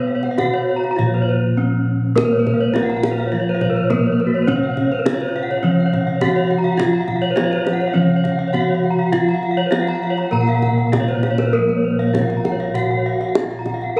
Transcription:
Already playing: B2 B3 B4
0.07 F5
0.15 C#5
0.23 F#5, kendang slap
0.31 F5
0.38 B3 F#4 F#5, kendang high, kendang low
0.46 F5
0.53 C#5, kendang slap
0.62 F5
0.69 C#5
0.76 A#5
0.84 F5, kendang slap
0.91 A#5
0.96 A#2 F3 F4 F5, kendang low
1.07 C#5
1.14 B4, kendang slap
1.22 C#5
1.29 B4
1.57 B3 C#4
2.16 A#3 A#4, kendang high, kendang low
2.21 A#1 B4
2.32 C#5
2.39 A#4
2.46 B4, kendang slap, kendang low
2.54 F5
2.61 C#5
2.68 B4
2.74 B3 F4 F5, kendang slap, kendang high
2.82 F#5
2.89 A#5, kendang slap
2.96 F#5
3.03 F5, kendang slap, kendang high
3.11 B4
3.18 F5, kendang slap
3.26 C#5
3.32 F3 F4 F5
3.40 C#5
3.49 B4
3.55 F5
3.61 C#5, kendang slap, kendang low
3.70 A#4
3.76 B4
3.84 C#5
3.90 A#3 B3 A#4, kendang slap, kendang low
3.98 B4
4.06 C#5
4.12 B4
4.20 A#4, kendang slap
4.27 F#4
4.34 C#5
4.42 B4
4.48 C#3 C#4 C#5, kendang low
4.56 F5
4.63 F#5
4.70 C#5
4.77 F5, kendang slap, kendang low
4.85 C#5
4.92 B4
4.99 A#4
5.06 B3 F4 F5, kendang slap, kendang high
5.14 C#5
5.20 B4, kendang slap
5.29 C#5
5.36 F5, kendang slap
5.43 F#5
5.50 C#5, kendang slap
5.58 F5
5.63 C#3 F3 C#4 C#5
5.71 F5
5.80 F#5
5.86 C#5
5.93 F5, kendang slap, kendang low
6.01 F#5
6.07 F5
6.16 C#5
6.21 B3 F#4 F#5, kendang slap, kendang high, kendang low
6.29 F5
6.36 C#5
6.43 F5
6.50 F#5, kendang slap
6.58 A#5
6.64 F5
6.72 F#5
6.77 F3 F4 F5, kendang high, kendang low
6.86 F#5
6.93 A#5
7.01 F5
7.08 F#5, kendang slap, kendang low
7.16 F5
7.22 C#5
7.31 B4
7.36 B3 F4 F5, kendang slap, kendang high
7.44 C#5
7.51 B4, kendang slap
7.58 C#5
7.65 F5, kendang slap, kendang high
7.73 F#5
7.80 C#5, kendang slap
7.88 F5
7.93 C#3 F3 C#4 C#5
8.02 F5
8.09 F#5
8.16 C#5
8.24 F5, kendang slap, kendang low
8.32 F#5
8.39 F5
8.48 C#5
8.53 B3 F#4 F#5, kendang slap, kendang low
8.61 F5
8.68 C#5
8.75 F5
8.83 F#5, kendang slap
8.91 A#5
8.99 F5
9.07 F#5
9.13 F3 F4 F5, kendang low
9.20 F#5
9.29 A#5
9.35 F5
9.43 F#5, kendang slap
9.51 F5
9.57 C#5
9.66 B4
9.71 B3 F4 F5, kendang slap, kendang high
9.80 F#5
9.87 A#5, kendang slap
9.95 F#5
10.03 F5, kendang slap
10.10 C#5
10.17 A#5, kendang slap
10.26 F#5
10.31 A#2 A#3 A#4 A#5
10.40 F#5
10.47 F5, kendang slap
10.55 A#5
10.62 F#5, kendang slap, kendang low
10.71 F5
10.78 F#5
10.87 A#5
10.92 B3 F4 F5, kendang slap, kendang high, kendang low
11.00 C#5
11.08 B4, kendang low
11.15 C#5
11.23 F5, kendang high
11.31 C#5
11.38 A#4, kendang high
11.45 B4
11.53 A#3 A#4
11.58 A#1 B4
11.69 A#4, kendang slap
11.76 C#5
11.84 B4
11.91 C#5
11.99 F5, kendang slap
12.07 C#5
12.14 B3 F4 F5, kendang high, kendang low
12.21 F#5
12.30 F5, kendang slap
12.37 A#5
12.44 F#5, kendang high, kendang low
12.52 C#5
12.60 F5, kendang slap
12.68 C#5
12.74 F#4 F#5, kendang low
12.83 F5
12.91 F#5
12.97 C#5
13.06 F5
13.13 F#5
13.20 F5, kendang slap
13.28 F#5
13.35 B3 F4 F5, kendang high
13.43 F#5
13.51 F5, kendang slap
13.59 A#5
13.66 F#5, kendang high, kendang low
13.74 F5
13.81 F#5, kendang slap
13.90 F5
13.96 A#4

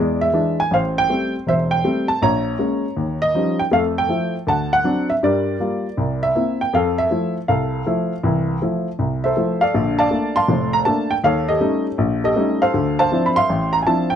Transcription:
Already playing: E2 G#3 D5
0.21 E5
0.33 E3 G#3 D4
0.60 G#5
0.71 A1 C5 F5
0.98 G5
1.09 G3 A3 C4
1.47 E1 C5 E5
1.71 G5
1.84 G3 A3 C4
2.08 A5
2.22 A#1 C#5 A#5
2.59 G#3 A#3 C#4
2.97 D#2
3.22 D#5
3.35 F3 G3 C#4 D#4
3.59 G5
3.71 F2 A3 A4 F5
3.98 G5
4.09 F3 A3 E4
4.47 D2 F#5 A5
4.73 F#5
4.84 F#3 C4 D4
5.10 E5
5.23 G2 G3 A#4 D5
5.60 G3 A#3 F4
5.97 C2
6.23 E5
6.35 A#3 C4 E4
6.61 G5
6.73 F2 A4 F5
6.98 E5
7.11 F3 A3 E4
7.48 C2 A4 F5
7.86 F3 A3 E4
8.24 C2 E3
8.62 F3 A3 E4
8.99 C2
9.24 A4 C5 E5
9.36 F3 A3 E4
9.61 A4 D5 F5
9.74 A#1 D3
9.99 D5 F5 A5
10.11 A3 A#3 D4
10.36 F5 A5 C6
10.48 F1 A2
10.73 A#5
10.85 A3 A#3 D4 A5
11.11 G5
11.24 D#2 A4 C#5 F5
11.48 G4 A4 D#5
11.60 G3 A3 C#4 D#4
11.98 A#1
12.24 G4 A4 D#5
12.36 G3 A3 C#4 D#4
12.62 A4 C5 F5
12.74 D2 D3
12.99 C5 F5 A5
13.12 F3 C4 D4 E4
13.26 B5
13.36 E5 F5 C6
13.49 A1
13.73 A#5
13.83 G#5
13.87 F3 C4 D4 E4 A5
14.10 G5

